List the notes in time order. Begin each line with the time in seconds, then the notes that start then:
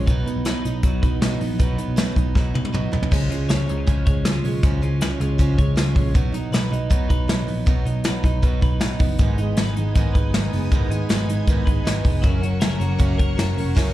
Already playing: G#3 C#4 F4
0.07 B1 B2 F#3 B3 D#4 B4, kick, closed hi-hat
0.26 F#3 B3 D#4, closed hi-hat
0.36 B1
0.45 B2 F#3 B3 D#4 B4, snare, closed hi-hat
0.65 B1 F#3 B3 D#4, closed hi-hat
0.83 B1 B2 F#3 B3 D#4, kick, closed hi-hat
1.02 B1 F#3 B3 D#4 B4, kick, closed hi-hat
1.22 B1 B2 F#3 B3 D#4, snare, closed hi-hat
1.40 A#1 F#3 B3 D#4, open hi-hat
1.59 B1 B2 F#3 B3 D#4 B4, kick, closed hi-hat
1.78 F#3 B3 D#4, closed hi-hat
1.88 B1
1.96 B2 F#3 B3 D#4 B4, snare, closed hi-hat
2.16 B1 F#3 B3 D#4, kick, closed hi-hat
2.35 B1 B2 F#3 B3 D#4, kick, snare
2.54 B1 F#3 B3 D#4 B4, high tom
2.65 high tom
2.73 B1 B2 F#3 B3 D#4, mid tom
2.92 B1 F#3 B3 D#4, floor tom
3.03 floor tom
3.11 C#2 C#3 F3 G#3 C#4, kick, crash
3.30 C#2 F3 G#3 C#4 F4, closed hi-hat
3.49 C#2 C#3 F3 G#3 C#4 C#5, snare, closed hi-hat
3.68 C#2 F3 G#3 C#4 D#4, closed hi-hat
3.78 F4
3.87 C#2 C#3 F3 G#3 C#4, kick, closed hi-hat
4.06 C#2 F3 G#3 C#4 C#5, kick, closed hi-hat
4.25 C#2 C#3 F3 G#3 C#4 F4, snare, closed hi-hat
4.44 B1 F3 G#3 C#4, open hi-hat
4.63 C#2 C#3 F3 G#3 C#4, kick, closed hi-hat
4.82 C#2 F3 G#3 C#4 F4, closed hi-hat
5.01 C#2 C#3 F3 G#3 C#4 B4, snare, closed hi-hat
5.10 C#5
5.20 C#2 F3 G#3 C#4 F4, closed hi-hat
5.38 C#2 C#3 F3 G#3 C#4, kick, closed hi-hat
5.58 C#2 F3 G#3 C#4 C#5, kick, closed hi-hat
5.76 C#2 C#3 F3 G#3 C#4 F4, snare, closed hi-hat
5.95 A#1 F3 G#3 C#4, kick, open hi-hat
6.14 B1 B2 F#3 B3 D#4, kick, closed hi-hat
6.32 B1 F#3 B3 D#4, closed hi-hat
6.51 B1 B2 F#3 B3 D#4 B4, snare, closed hi-hat
6.70 B1 F#3 B3 D#4, closed hi-hat
6.90 B1 B2 F#3 B3 D#4, kick, closed hi-hat
7.09 B1 F#3 B3 D#4 B4, kick, closed hi-hat
7.28 B1 B2 F#3 B3 D#4, snare, closed hi-hat
7.47 A#1 F#3 B3 D#4, open hi-hat
7.66 B1 B2 F#3 B3 D#4, kick, closed hi-hat
7.85 B1 F#3 B3 D#4, closed hi-hat
8.04 B1 B2 F#3 B3 D#4 B4, snare, closed hi-hat
8.23 B1 F#3 B3 D#4, kick, closed hi-hat
8.42 B1 B2 F#3 B3 D#4, kick, closed hi-hat
8.61 B1 F#3 B3 D#4 B4, kick, closed hi-hat
8.80 B1 B2 F#3 B3 D#4, snare, closed hi-hat
8.99 F#1 F#3 B3 D#4, kick, open hi-hat
9.19 G#1 G#2 D#3 G#3 B3 D#4 B4 G#5 D#6, kick, closed hi-hat
9.38 G#1 G#3 B3 D#4, closed hi-hat
9.57 G#1 D#3 G#3 B3 D#4 B4, snare, closed hi-hat
9.76 G#1 G#3 B3 D#4, closed hi-hat
9.95 G#1 G#2 D#3 G#3 B3 D#4, kick, closed hi-hat
10.13 G#1 D#4 B4, kick, closed hi-hat
10.18 G#3 B3
10.33 G#1 D#3 G#3 D#4, snare, closed hi-hat
10.37 B3 D#4
10.52 F#1 B3 D#4, open hi-hat
10.56 G#3
10.72 G#1 G#2 D#3 G#3 B3 D#4, kick, closed hi-hat
10.90 G#1 B3 D#4, closed hi-hat
10.94 G#3
11.09 G#1 D#3 G#3 B3 B4, snare, closed hi-hat
11.14 D#4
11.28 G#1 B3 D#4, closed hi-hat
11.33 G#3
11.47 G#1 G#2 D#3 G#3 B3 D#4, kick, closed hi-hat
11.66 G#1 B3 D#4 B4, kick, closed hi-hat
11.70 G#3
11.84 G#1 D#3 G#3 B3 D#4, snare, closed hi-hat
11.88 D#4
12.04 F1 G#3 B3 D#4, kick, open hi-hat
12.23 F#1 F#2 C#3 F#3 A#3 C#4 A#4 F#5 C#6, kick, closed hi-hat
12.41 F#1 F#3 A#3 C#4 F#4, closed hi-hat
12.60 F#1 C#3 F#3 A#3 C#4 A#4, snare, closed hi-hat
12.79 F#1 F#3 A#3 C#4 F#4, closed hi-hat
12.98 F#1 F#2 C#3 F#3 A#3 C#4, kick, closed hi-hat
13.18 F#1 F#3 A#3 C#4 A#4, kick, closed hi-hat
13.37 F#1 C#3 F#3 A#3 C#4 F#4, snare, closed hi-hat
13.57 F1 F#3 A#3 C#4, open hi-hat
13.75 F#2 C#3 F#3 A#3 C#4, kick, snare, crash